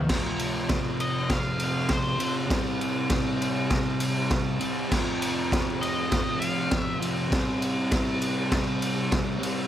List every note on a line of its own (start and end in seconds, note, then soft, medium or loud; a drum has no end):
0.08 2.18 F2 medium
0.08 2.18 C3 medium
0.08 kick loud
0.08 snare loud
0.08 crash loud
0.13 2.16 F3 medium
0.39 ride medium
0.69 kick loud
0.69 snare loud
0.69 ride medium
1.00 1.31 D#5 loud
1.00 ride medium
1.30 1.61 F5 loud
1.30 kick loud
1.30 snare loud
1.30 ride loud
1.59 ride medium
1.64 1.90 F5 loud
1.89 kick loud
1.89 snare loud
1.89 ride loud
1.93 2.33 C5 medium
2.17 2.45 C3 medium
2.17 2.47 F3 medium
2.17 ride medium
2.21 2.49 F2 medium
2.46 4.57 C3 medium
2.46 4.58 G3 loud
2.50 4.59 C4 loud
2.50 kick loud
2.50 snare loud
2.50 ride loud
2.81 ride medium
3.10 kick loud
3.10 snare loud
3.10 ride loud
3.42 ride medium
3.70 kick loud
3.70 snare loud
3.70 ride medium
4.00 ride medium
4.30 kick loud
4.30 snare loud
4.30 ride medium
4.59 4.89 G3 medium
4.59 7.32 C4 loud
4.59 ride medium
4.63 4.89 C3 medium
4.89 6.98 F2 medium
4.89 6.99 C3 medium
4.89 6.97 F3 loud
4.89 kick loud
4.89 snare loud
4.89 crash loud
5.22 ride medium
5.52 kick loud
5.52 snare loud
5.52 ride loud
5.82 6.40 D#5 medium
5.82 ride medium
6.12 kick loud
6.12 snare medium
6.12 ride medium
6.40 6.80 F5 loud
6.40 ride medium
6.71 kick loud
6.71 snare loud
6.71 ride loud
6.80 6.96 E5 loud
6.99 7.27 C3 medium
6.99 7.28 F3 medium
6.99 ride medium
7.03 7.30 F2 medium
7.28 9.38 C3 medium
7.28 9.39 G3 medium
7.28 kick loud
7.28 snare loud
7.28 ride loud
7.33 9.38 C4 loud
7.62 ride medium
7.91 kick loud
7.91 snare loud
7.91 ride loud
8.22 ride medium
8.52 kick loud
8.52 snare loud
8.52 ride loud
8.82 ride medium
9.12 kick loud
9.12 snare loud
9.12 ride loud
9.39 9.67 C3 medium
9.39 9.67 G3 medium
9.39 9.67 C4 loud
9.43 ride medium